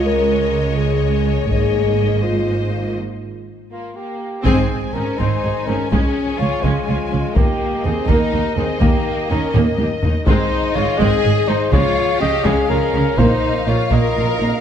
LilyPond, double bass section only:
\new Staff \with { instrumentName = "Double bass section" } { \clef bass \time 6/8 \key aes \major \tempo 4. = 82 des,2. | aes,,2. | r2. | aes,,8 r8 aes,,8 aes,,8 aes,,8 aes,,8 |
des,8 r8 des,8 des,8 des,8 des,8 | ees,8 r8 ees,8 ees,8 ees,8 ees,8 | ees,8 r8 ees,8 ees,8 ees,8 ees,8 | aes,,8 r8 aes,,8 aes,,8 aes,,8 aes,,8 |
des,8 r8 des,8 des,8 des,8 des,8 | bes,,8 r8 bes,,8 bes,,8 bes,,8 bes,,8 | }